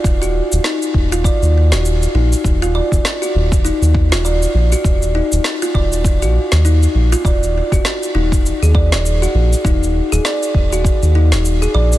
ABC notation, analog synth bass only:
X:1
M:4/4
L:1/16
Q:"Swing 16ths" 1/4=100
K:Ebm
V:1 name="Analog synth bass" clef=bass
E,,,2 z E,,, z2 E,,,2 z E,,2 E,,,2 z B,,, z | E,,,2 z E,,, z2 E,,,2 z E,,2 E,,,2 z B,,, z | E,,,2 z E,,, z2 E,,,3 B,,, z E,,2 z B,,, z | E,,,2 z E,,, z2 E,,,2 z E,,2 E,,,2 z B,,, z |
E,,,2 z E,,, z2 E,,,2 z E,,2 E,,,2 z B,,, z |]